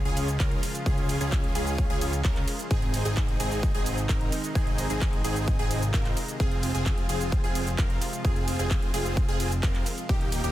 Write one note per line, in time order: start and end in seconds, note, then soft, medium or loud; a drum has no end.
0.00 2.67 C#3 medium
0.00 2.67 F3 medium
0.00 10.05 G#3 medium
0.00 2.67 F4 medium
0.05 0.38 C#2 loud
0.05 0.28 C#4 medium
0.05 0.28 F4 medium
0.05 0.28 G#4 loud
0.05 closed hi-hat soft
0.17 open hi-hat loud
0.17 ride medium
0.17 shaker medium
0.28 closed hi-hat soft
0.28 shaker soft
0.40 0.61 C#2 loud
0.40 0.63 C#4 medium
0.40 0.63 F4 medium
0.40 0.63 A#4 medium
0.40 kick loud
0.40 clap loud
0.40 closed hi-hat medium
0.40 shaker soft
0.51 closed hi-hat soft
0.63 open hi-hat loud
0.63 ride medium
0.63 shaker medium
0.75 closed hi-hat soft
0.75 shaker soft
0.86 1.18 C#2 loud
0.86 1.18 C#4 medium
0.86 1.18 F4 medium
0.86 1.18 G#4 loud
0.86 kick loud
0.86 closed hi-hat medium
0.86 shaker soft
0.98 closed hi-hat soft
1.09 open hi-hat loud
1.09 ride medium
1.09 shaker medium
1.21 1.53 C#2 loud
1.21 1.53 C#4 medium
1.21 1.53 F4 medium
1.21 1.53 G#4 medium
1.21 closed hi-hat soft
1.21 shaker soft
1.32 kick loud
1.32 clap loud
1.32 closed hi-hat medium
1.32 shaker soft
1.44 closed hi-hat soft
1.55 1.88 C#2 loud
1.55 1.87 C#4 medium
1.55 1.87 F4 medium
1.55 1.87 G#4 loud
1.55 open hi-hat loud
1.55 ride medium
1.55 shaker medium
1.67 closed hi-hat soft
1.67 shaker soft
1.78 kick loud
1.78 closed hi-hat medium
1.78 shaker soft
1.90 2.22 C#2 loud
1.90 2.13 C#4 medium
1.90 2.13 F4 medium
1.90 2.13 G#4 loud
1.90 closed hi-hat soft
2.01 open hi-hat loud
2.01 ride medium
2.01 shaker medium
2.13 closed hi-hat soft
2.13 shaker soft
2.25 2.45 C#2 loud
2.25 2.47 C#4 medium
2.25 2.47 F4 medium
2.25 2.47 A#4 medium
2.25 kick loud
2.25 clap loud
2.25 closed hi-hat medium
2.25 shaker soft
2.36 clap soft
2.36 closed hi-hat soft
2.48 open hi-hat loud
2.48 ride medium
2.48 shaker medium
2.59 closed hi-hat soft
2.59 shaker soft
2.71 3.03 G#1 medium
2.71 10.05 C3 medium
2.71 6.36 D#3 medium
2.71 3.03 C4 medium
2.71 3.03 D#4 medium
2.71 6.36 D#4 medium
2.71 3.03 G#4 loud
2.71 kick loud
2.71 closed hi-hat medium
2.71 shaker soft
2.82 closed hi-hat soft
2.94 open hi-hat loud
2.94 ride medium
2.94 shaker medium
3.05 3.38 G#1 loud
3.05 3.37 C4 medium
3.05 3.37 D#4 medium
3.05 3.37 G#4 medium
3.05 3.37 G#4 loud
3.05 closed hi-hat soft
3.05 shaker soft
3.17 kick loud
3.17 clap loud
3.17 closed hi-hat medium
3.17 shaker soft
3.28 closed hi-hat soft
3.40 3.72 G#1 loud
3.40 3.72 C4 medium
3.40 3.72 D#4 medium
3.40 3.72 G#4 loud
3.40 open hi-hat loud
3.40 ride medium
3.40 shaker medium
3.51 closed hi-hat soft
3.51 shaker soft
3.63 kick loud
3.63 closed hi-hat medium
3.63 shaker soft
3.75 4.07 G#1 loud
3.75 3.97 C4 medium
3.75 3.97 D#4 medium
3.75 3.97 G#4 loud
3.75 closed hi-hat soft
3.86 open hi-hat loud
3.86 ride medium
3.86 shaker medium
3.98 closed hi-hat soft
3.98 shaker soft
4.09 4.30 G#1 loud
4.09 4.32 C4 medium
4.09 4.32 D#4 medium
4.09 4.32 A#4 medium
4.09 kick loud
4.09 clap loud
4.09 closed hi-hat medium
4.09 shaker soft
4.21 closed hi-hat soft
4.32 open hi-hat loud
4.32 ride medium
4.32 shaker medium
4.44 closed hi-hat soft
4.44 shaker soft
4.55 4.88 G#1 loud
4.55 4.87 C4 medium
4.55 4.87 D#4 medium
4.55 4.87 G#4 loud
4.55 kick loud
4.55 closed hi-hat medium
4.55 shaker soft
4.67 closed hi-hat soft
4.78 open hi-hat loud
4.78 ride medium
4.78 shaker medium
4.90 5.22 G#1 loud
4.90 5.22 C4 medium
4.90 5.22 D#4 medium
4.90 5.22 G#4 medium
4.90 closed hi-hat soft
4.90 shaker soft
5.01 kick loud
5.01 clap loud
5.01 closed hi-hat medium
5.01 shaker soft
5.13 closed hi-hat soft
5.25 5.57 G#1 loud
5.25 5.56 C4 medium
5.25 5.56 D#4 medium
5.25 5.56 G#4 loud
5.25 open hi-hat loud
5.25 ride medium
5.25 shaker medium
5.36 closed hi-hat soft
5.36 shaker soft
5.48 kick loud
5.48 closed hi-hat medium
5.48 swell medium
5.48 shaker soft
5.59 5.92 G#1 loud
5.59 5.82 C4 loud
5.59 5.82 D#4 medium
5.59 5.82 G#4 loud
5.59 closed hi-hat soft
5.71 open hi-hat loud
5.71 ride medium
5.71 shaker medium
5.82 closed hi-hat soft
5.82 shaker soft
5.94 6.14 G#1 loud
5.94 6.17 C4 medium
5.94 6.17 D#4 medium
5.94 6.17 A#4 medium
5.94 kick loud
5.94 clap loud
5.94 closed hi-hat medium
5.94 shaker soft
6.05 clap soft
6.05 closed hi-hat soft
6.17 open hi-hat loud
6.17 ride medium
6.17 shaker medium
6.28 closed hi-hat soft
6.28 shaker soft
6.40 6.72 F1 loud
6.40 10.06 F3 medium
6.40 6.72 C4 medium
6.40 10.06 F4 loud
6.40 6.72 F4 medium
6.40 6.72 G#4 loud
6.40 kick loud
6.40 closed hi-hat medium
6.40 shaker soft
6.51 closed hi-hat soft
6.63 open hi-hat loud
6.63 ride medium
6.63 shaker medium
6.75 7.07 F1 loud
6.75 7.06 C4 medium
6.75 7.06 F4 medium
6.75 7.06 G#4 medium
6.75 closed hi-hat soft
6.75 shaker soft
6.86 kick loud
6.86 clap loud
6.86 closed hi-hat medium
6.86 shaker soft
6.98 closed hi-hat soft
7.09 7.42 F1 loud
7.09 7.41 C4 medium
7.09 7.41 F4 medium
7.09 7.41 G#4 loud
7.09 open hi-hat loud
7.09 ride medium
7.09 shaker medium
7.21 closed hi-hat soft
7.21 shaker soft
7.32 kick loud
7.32 closed hi-hat medium
7.32 shaker soft
7.44 7.76 F1 loud
7.44 7.67 C4 loud
7.44 7.67 F4 medium
7.44 7.67 G#4 loud
7.44 closed hi-hat soft
7.55 open hi-hat loud
7.55 ride medium
7.55 shaker medium
7.67 closed hi-hat soft
7.67 shaker soft
7.78 7.99 F1 loud
7.78 8.01 C4 medium
7.78 8.01 F4 medium
7.78 8.01 A#4 medium
7.78 kick loud
7.78 clap loud
7.78 closed hi-hat medium
7.78 shaker soft
7.90 closed hi-hat soft
8.02 open hi-hat loud
8.02 ride medium
8.02 shaker medium
8.13 closed hi-hat soft
8.13 shaker soft
8.25 8.57 F1 loud
8.25 8.57 C4 medium
8.25 8.57 F4 medium
8.25 8.56 G#4 loud
8.25 8.57 G#4 loud
8.25 kick loud
8.25 closed hi-hat medium
8.25 shaker soft
8.36 closed hi-hat soft
8.48 open hi-hat loud
8.48 ride medium
8.48 shaker medium
8.59 8.92 F1 loud
8.59 8.91 C4 medium
8.59 8.91 F4 medium
8.59 8.91 G#4 medium
8.59 closed hi-hat soft
8.59 shaker soft
8.71 kick loud
8.71 clap loud
8.71 closed hi-hat medium
8.71 shaker soft
8.82 closed hi-hat soft
8.94 9.26 F1 loud
8.94 9.26 C4 medium
8.94 9.26 F4 medium
8.94 9.26 G#4 loud
8.94 open hi-hat loud
8.94 ride medium
8.94 shaker medium
9.05 closed hi-hat soft
9.05 shaker soft
9.17 kick loud
9.17 closed hi-hat medium
9.17 shaker soft
9.29 9.61 F1 loud
9.29 9.51 C4 loud
9.29 9.51 F4 medium
9.29 9.51 G#4 loud
9.29 closed hi-hat soft
9.40 open hi-hat loud
9.40 ride medium
9.40 shaker medium
9.52 closed hi-hat soft
9.52 shaker soft
9.63 9.84 F1 loud
9.63 9.86 C4 medium
9.63 9.86 F4 medium
9.63 9.86 A#4 medium
9.63 kick loud
9.63 clap loud
9.63 closed hi-hat medium
9.63 shaker soft
9.75 clap soft
9.75 closed hi-hat soft
9.86 open hi-hat loud
9.86 ride medium
9.86 shaker medium
9.98 closed hi-hat soft
9.98 shaker soft
10.09 10.42 D#1 loud
10.09 10.52 D#3 medium
10.09 10.52 G3 medium
10.09 10.41 A#3 medium
10.09 10.52 A#3 medium
10.09 10.41 D#4 medium
10.09 10.41 G4 loud
10.09 10.52 G4 loud
10.09 kick loud
10.09 closed hi-hat medium
10.09 shaker soft
10.21 closed hi-hat soft
10.32 open hi-hat loud
10.32 ride medium
10.32 shaker medium
10.44 10.52 D#1 loud
10.44 10.52 A#3 medium
10.44 10.52 D#4 medium
10.44 10.52 G4 medium
10.44 closed hi-hat soft
10.44 shaker soft